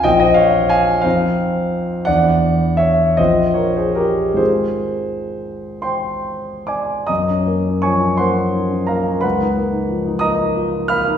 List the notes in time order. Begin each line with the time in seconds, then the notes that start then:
0.03 A#1 C4 F4 D#5 G5
0.20 C5 D#5
0.34 C#5 F5
0.69 F5 G#5
1.02 F2 C4 D#4 C5 F5
2.05 E2 D4 E4 D5 F#5
2.77 C#5 E5
3.17 A#1 C4 F4 C5 D#5
3.54 A#4 C#5
3.76 G#4 C5
3.95 G4 A#4
4.34 G#2 D#3 G#3 C4 F4 C5
4.38 G#4
5.82 C5 G5 C6
6.67 D5 G#5 D6
7.07 F#2 D#5 A#5 D#6
7.30 C#4
7.46 A#3
7.68 C#4
7.82 F3 C#5 G#5 C#6
8.02 C#4
8.17 A#3 C5 F#5 C6
8.37 C#4
8.54 D#4
8.71 C#4
8.87 A#3 A#4 F5 A#5
9.07 C#4
9.21 C#2 B4 F#5 B5
9.40 D#4
9.57 A#3
9.72 D#4
9.88 F3
10.07 D#4
10.19 A#3 D#5 A#5 D#6
10.41 D#4
10.57 F4
10.73 D#4
10.88 A#3 F5 B5 F6
11.08 D#4